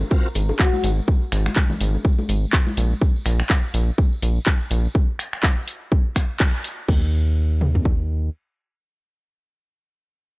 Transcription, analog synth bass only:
0.35 0.52 G#1 medium
0.84 1.00 G#1 loud
1.32 1.49 G#1 loud
1.81 1.97 G#1 loud
2.29 2.45 G#1 medium
2.77 2.94 A#1 loud
3.26 3.42 A#1 loud
3.74 3.91 A#1 loud
4.22 4.39 A#1 medium
4.71 4.87 A#1 loud
6.89 8.30 D#2 loud

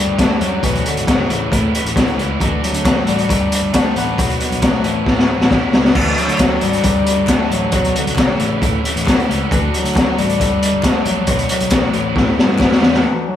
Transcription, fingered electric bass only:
0.07 0.26 G1 medium
0.41 0.59 F#2 loud
0.63 0.81 B1 loud
0.95 1.24 G#1 medium
1.28 1.47 A1 medium
1.52 1.71 A2 loud
1.84 2.03 A1 medium
2.16 2.36 C#2 medium
2.41 2.59 D2 loud
2.72 3.01 D2 medium
3.05 3.25 A1 loud
3.30 3.48 G1 loud
3.62 3.81 G1 medium
3.96 4.14 A1 loud
4.19 4.37 B1 loud
4.51 4.79 B1 medium
4.84 5.03 A1 loud
5.06 5.25 A2 loud
5.38 5.58 A1 medium
5.72 5.91 C#2 medium
5.95 6.14 D2 medium
6.28 6.56 D2 medium
6.62 6.81 G#1 medium
6.84 7.03 G1 loud
7.18 7.36 G1 medium
7.50 7.69 A1 medium
7.72 7.91 B1 loud
8.06 8.34 B1 loud
8.40 8.58 A1 medium
8.62 8.80 A2 loud
8.96 9.14 A1 loud
9.29 9.47 C#2 medium
9.51 9.69 D2 loud
9.84 10.12 D2 medium
10.18 10.36 A1 medium
10.40 10.58 G1 loud
10.72 10.91 G1 loud
11.05 11.24 A#1 loud
11.27 11.46 B1 loud
11.61 11.89 B1 medium
11.94 12.12 A1 loud
12.15 12.34 A2 loud
12.38 12.57 G2 medium
12.60 12.80 F#2 medium
12.82 13.02 E2 medium

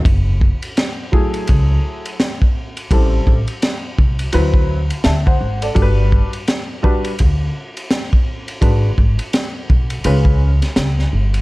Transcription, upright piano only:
1.12 2.13 F#3 medium
1.12 2.14 A3 medium
1.12 2.14 E4 medium
1.12 2.14 G#4 medium
2.91 3.35 G3 medium
2.91 3.35 C4 medium
2.91 3.36 E4 medium
2.91 3.36 A4 medium
4.33 4.77 F#3 medium
4.33 4.77 C4 medium
4.33 4.78 E4 medium
4.33 4.78 B4 medium
5.04 5.25 E5 soft
5.04 5.25 A5 medium
5.26 5.61 C5 medium
5.26 5.60 F#5 medium
5.62 5.74 A4 soft
5.62 5.96 D5 medium
5.75 6.28 G3 medium
5.75 6.28 D4 medium
5.75 6.29 F#4 medium
5.75 5.84 A4 medium
5.82 6.32 B4 medium
6.83 7.10 G3 medium
6.83 7.10 D4 medium
6.83 7.11 F#4 medium
6.83 7.11 B4 medium
8.61 8.89 G#3 medium
8.61 8.89 D4 medium
8.61 8.89 F#4 medium
8.61 8.89 B4 medium
10.05 10.49 G#3 medium
10.05 10.49 C#4 medium
10.05 10.49 F4 medium
10.05 10.49 B4 medium

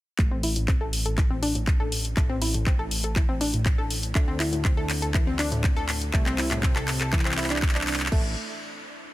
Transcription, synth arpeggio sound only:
0.19 0.30 A3 medium
0.31 0.36 C4 loud
0.43 0.51 E4 medium
0.56 0.67 A2 medium
0.68 0.76 C4 medium
0.81 0.85 A4 loud
1.06 1.13 A4 medium
1.18 1.29 E3 medium
1.30 1.35 C4 loud
1.42 1.50 D4 loud
1.55 1.66 A2 medium
1.80 1.84 A4 loud
2.17 2.28 A3 medium
2.30 2.34 C4 loud
2.42 2.49 E4 medium
2.54 2.65 A2 medium
2.66 2.74 C4 medium
2.79 2.83 A4 loud
3.04 3.11 A4 medium
3.16 3.27 E3 medium
3.29 3.33 C4 loud
3.41 3.48 D4 loud
3.53 3.64 A2 medium
3.78 3.83 A4 loud
4.15 4.26 A3 medium
4.28 4.32 C4 loud
4.40 4.47 E4 medium
4.53 4.63 A2 medium
4.65 4.72 C4 medium
4.77 4.82 A4 loud
5.02 5.09 A4 medium
5.14 5.26 E3 medium
5.27 5.31 C4 loud
5.39 5.47 D4 loud
5.52 5.62 A2 medium
5.76 5.81 A4 loud
6.13 6.25 A3 medium
6.26 6.30 C4 loud
6.38 6.46 E4 medium
6.51 6.62 A2 medium
6.63 6.71 C4 medium
6.76 6.80 A4 loud
7.01 7.08 A4 medium
7.13 7.24 E3 medium
7.25 7.30 C4 loud
7.37 7.49 E4 medium
7.50 7.57 D4 medium
7.75 7.86 D4 medium
8.12 8.35 A3 medium

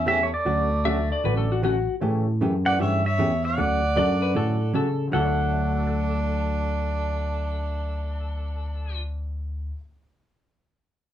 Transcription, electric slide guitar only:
0.85 1.10 E5 loud
1.12 1.24 D5 medium
1.25 1.37 B4 medium
1.37 1.50 A4 medium
1.52 1.64 F#4 medium
1.65 1.95 F#4 loud
3.97 4.21 D5 loud
4.22 4.35 B4 medium
4.36 4.74 A4 loud
4.75 5.06 A4 medium
5.14 9.01 A4 medium

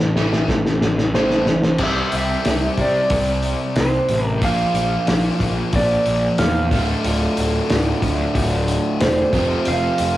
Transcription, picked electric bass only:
0.00 0.14 A1 medium
0.16 0.47 A1 medium
0.48 0.79 A1 medium
0.81 1.12 A1 medium
1.14 1.79 A1 medium
1.79 2.00 C2 medium
2.13 2.34 C2 medium
2.46 2.67 C2 medium
2.78 2.99 C3 medium
3.11 3.53 C2 loud
3.76 3.97 C2 medium
4.09 4.42 A1 medium
4.42 4.63 A#1 loud
4.74 4.95 A#1 medium
5.08 5.29 A#1 medium
5.40 5.61 A#1 medium
5.74 5.94 A#1 medium
6.06 6.27 A#1 medium
6.39 6.72 E2 medium
6.71 6.92 D1 medium
7.05 7.26 D1 medium
7.38 7.59 D1 medium
7.71 7.92 D1 medium
8.03 8.24 D2 medium
8.35 8.77 D1 medium
9.02 9.22 E1 medium
9.33 9.54 F1 medium
9.67 9.88 F1 loud
10.00 10.17 F1 medium

